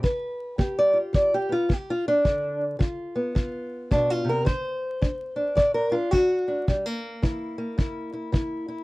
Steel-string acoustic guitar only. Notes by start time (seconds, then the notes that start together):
0.03 G3 B4
0.58 B3 G4
0.79 D5
0.93 F4
1.13 D3 D5
1.34 G4
1.49 B3 F4
1.69 B3 G4
1.90 F4
2.08 D4
2.25 G2 D3
2.79 D3 F4
3.16 B3
3.35 D3 F4
3.91 B2 D4
4.10 F4
4.25 C3
4.29 A#4
4.45 D3 C5
5.02 D4
5.36 D4
5.55 A2 D5
5.74 A#4
5.91 D4 F4
6.11 D4 F#4
6.48 D4
6.68 C3 G3
6.86 A#3
7.22 E3 E4
7.58 A#3
7.78 G2 E4
8.13 E4
8.32 E3 E4
8.68 E4